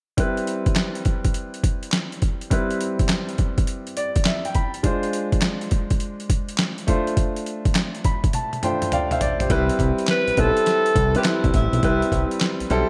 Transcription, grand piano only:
0.17 G3 C4 E4 B4
2.50 G3 C4 E4 B4
3.97 D5
4.27 E5
4.45 G5
4.55 B5
4.83 G#3 D4 F4 C5
6.87 A3 D4 F4 C5
8.05 B5
8.34 A5
8.63 A3 D4 F4 C5 G5
8.93 D5 F5 G5
9.12 C5 E5 F5
9.21 D5
9.41 G4 C5
9.50 G3 C4 E4 B4
10.37 G3 C4 E4 B4
11.15 G3 C4 E4 B4
11.83 G3 C4 E4 B4
12.70 G3 C4 E4 A4

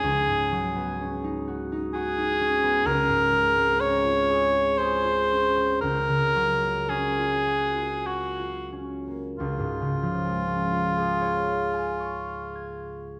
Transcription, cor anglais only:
Already playing: G#4
1.94 G#4
2.86 A#4
3.81 C#5
4.78 C5
5.81 A#4
6.89 G#4
8.07 F#4
9.38 F4

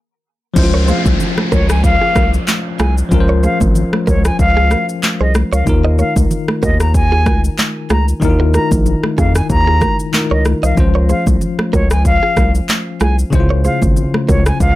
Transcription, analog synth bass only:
0.56 C#2
1.06 C2
1.52 C#2
2.16 C2
2.80 C2
3.11 C#2
3.61 G#1
4.08 C#2
4.39 C#2
5.21 C2
5.53 C#2
5.67 D#2
6.16 C#2
6.63 D#2
7.27 C#2
7.90 C#2
8.22 D#2
8.72 A#1
9.18 F2
9.50 D#2
10.31 C#2
10.63 C2
10.77 C#2
11.27 C2
11.73 C#2
12.37 C2
13.01 C2
13.33 C#2
13.82 G#1
14.29 C#2
14.60 C#2

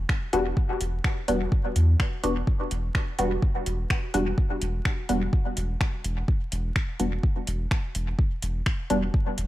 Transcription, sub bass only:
0.33 E1
0.81 E1
1.28 E1
1.76 E2
2.23 E1
2.71 E1
3.19 E1
3.66 E1
4.14 E1
4.62 E1
5.09 E1
5.57 E1
6.04 E1
6.52 E1
7.00 E1
7.47 E1
7.95 E1
8.43 E1
8.90 E1
9.38 E1

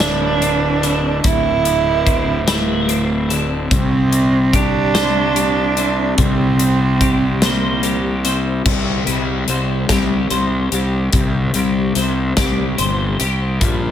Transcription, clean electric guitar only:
Already playing: D2 C4
0.00 E4
0.41 C4
0.82 D3
1.23 D2
2.06 C4
2.47 E4
2.88 C4
3.29 D3
3.70 C3
4.53 G4
4.94 C5
5.36 G4
5.77 C4
6.18 C3
7.01 G4
7.42 C5
7.83 G4
8.25 C4
8.65 C3
9.06 G3
9.48 C4
9.89 G4
10.30 C5
10.72 G4
11.13 C3
11.55 G3
11.96 C4
12.37 G4
12.78 C5
13.20 G4
13.61 G2

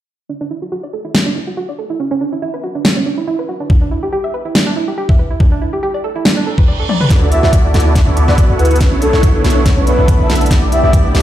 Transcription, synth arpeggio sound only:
0.29 D4
0.41 D4
0.51 E4
0.62 F#4
0.72 F#4
0.83 D5
0.93 A4
1.05 E4
1.15 D4
1.26 D4
1.36 E4
1.47 F#4
1.57 F#4
1.69 D5
1.79 A4
1.90 E4
2.00 C#4
2.11 C#4
2.21 D4
2.32 E4
2.42 E4
2.54 B4
2.63 F#4
2.75 D4
2.85 C#4
2.96 C#4
3.06 D4
3.18 E4
3.28 E4
3.39 B4
3.49 F#4
3.60 D4
3.70 D4
3.81 D4
3.91 E4
4.03 G4
4.13 G4
4.24 E5
4.34 B4
4.45 E4
4.55 D4
4.67 D4
4.76 E4
4.88 G4
4.98 G4
5.09 E5
5.19 B4
5.30 E4
5.40 D4
5.52 D4
5.61 E4
5.73 G4
5.83 G4
5.94 D5
6.04 A4
6.15 E4
6.25 D4
6.37 D4
6.47 A4
6.58 B4
6.68 D5
6.79 A4
6.89 D5
7.01 B4
7.10 D4
7.22 D4
7.32 E4
7.43 F#4
7.53 F#4
7.64 D5
7.74 A4
7.86 E4
7.96 D4
8.07 D4
8.17 E4
8.28 F#4
8.38 F#4
8.50 D5
8.59 A4
8.71 E4
8.81 C#4
8.92 C#4
9.02 D4
9.13 E4
9.23 E4
9.34 B4
9.44 F#4
9.56 D4
9.66 C#4
9.77 C#4
9.87 D4
9.98 E4
10.08 E4
10.20 B4
10.29 F#4
10.41 D4
10.51 D4
10.62 D4
10.72 E4
10.84 G4
10.93 G4
11.05 E5
11.15 B4

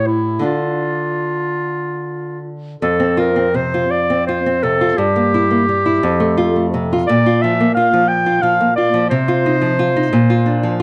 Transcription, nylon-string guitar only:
Already playing: A2 E4 G4
0.39 D3 D4 F4
2.82 F2
3.00 C4
3.17 F4
3.36 C4
3.54 C3
3.74 F4
4.10 C4
4.28 F4
4.46 C4
4.63 C3
4.81 F4
4.98 G2
5.16 A#3
5.34 E4
5.51 A#3
5.69 G3
5.86 E4
6.03 F2
6.20 A3
6.37 F4
6.56 A3
6.74 C3
6.93 F4
7.09 A#2
7.26 F4
7.44 F3
7.60 A#3
7.77 F4
7.93 F3
8.26 F4
8.43 F3
8.61 A#3
8.78 F4
8.94 F3
9.11 C3
9.28 F4
9.46 D#4
9.62 F3
9.79 F4
9.96 D#4
10.13 A#2
10.30 F4
10.46 D4
10.63 F3

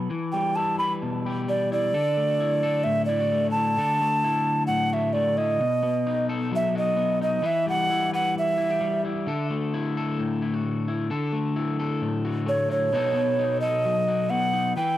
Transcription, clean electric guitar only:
Already playing: A4
0.10 E3, muted clean electric guitar stroke
0.33 G3
0.57 E4
0.80 B4
1.02 B2
1.26 G4
1.48 G3
1.72 E4
1.94 D3 A4
2.17 A3
2.40 E4
2.63 A4
2.85 A2
3.09 E4
3.20 F#4
3.32 A3
3.56 E4
3.77 D3 A4
4.01 A3
4.24 E4
4.68 A2
4.92 F#4
5.14 A3
5.38 E4
5.60 B2, muted clean electric guitar stroke
5.83 B3
6.07 D#4
6.29 A4
6.52 F#3
6.75 F#4
6.97 B3
7.21 D#4
7.42 E3 B4
7.66 G3
7.90 E4
8.13 B4
8.35 muted clean electric guitar stroke
8.58 E4
8.70 G4
8.81 G3
9.05 E4
9.27 D3 A4
9.50 A3
9.74 E4
9.97 A4
10.19 A2
10.42 E4
10.54 F#4
10.65 muted clean electric guitar stroke
10.88 E4
11.10 D3 A4
11.33 A3
11.56 E4
11.79 A4
12.02 A2
12.25 F#4
12.46 A3
12.69 E4
12.93 B2 B3 D#4 F#4 A4
13.14 B3
13.39 D#4
13.63 A4
13.85 F#3
14.08 F#4
14.30 B3
14.53 D#4
14.77 E3 B4

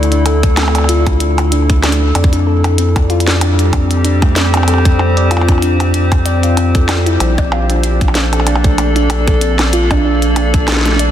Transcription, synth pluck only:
Already playing: D5
0.12 D4
0.26 A4
0.43 A4
0.57 C4
0.75 D5
0.89 F4
1.07 D4
1.20 D4
1.52 D4
1.83 D4
2.01 A3
2.15 D5
2.33 D4
2.47 A4
2.64 A4
2.78 C4
2.96 D5
3.10 F4
3.27 D4
3.41 D4
3.73 D4
4.05 D4
4.22 A3
4.36 D5
4.54 D4
4.68 A4
4.85 A4
4.99 C4
5.17 D5
5.31 F4
5.49 D4
5.62 D4
5.94 D4
6.26 D5
6.43 F4
6.57 C4
6.75 A4
6.89 D5
7.06 E4
7.20 C4
7.38 D5
7.52 F4
7.70 D4
7.84 D4
8.15 D4
8.33 A4
8.47 D4
8.64 A3
8.78 D5
8.96 D4
9.10 A4
9.27 A4
9.41 C4
9.59 D5
9.73 F4
9.91 D4
10.05 D4
10.36 D4
10.54 A4
10.68 D4
10.86 A3
10.99 D5

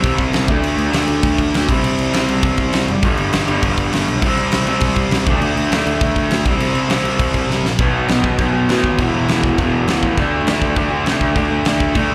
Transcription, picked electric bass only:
0.04 C2
0.18 C2
0.33 C2
0.48 D2
0.62 D2
0.77 D2
0.94 D2
1.08 D2
1.23 D2
1.38 D2
1.54 D2
1.68 C2
1.84 C2
1.99 C2
2.14 C2
2.28 C2
2.43 C2
2.58 C2
2.73 C2
2.88 F#1
3.03 G1
3.18 G1
3.33 G1
3.47 G1
3.63 G1
3.78 G1
3.93 G1
4.08 B1
4.22 C2
4.38 C2
4.52 C2
4.66 C2
4.82 C2
4.96 C2
5.11 C2
5.26 D2
5.41 D2
5.56 D2
5.71 D2
5.86 D2
6.01 D2
6.16 D2
6.30 D2
6.46 C2
6.60 C2
6.74 C2
6.89 C2
7.03 C2
7.19 C2
7.34 C2
7.49 C2
7.63 A#1
7.79 B1
8.09 B1
8.24 B1
8.38 B1
8.54 B1
8.69 A2
8.83 D#2
8.99 E1
9.14 E1
9.28 E1
9.58 E1
9.72 E1
9.87 D2
10.03 A1
10.18 D2
10.47 D2
10.62 D2
10.76 D2
10.91 D2
11.07 C3
11.21 D2
11.36 D2
11.51 D2
11.65 D2
11.95 D2
12.11 D2

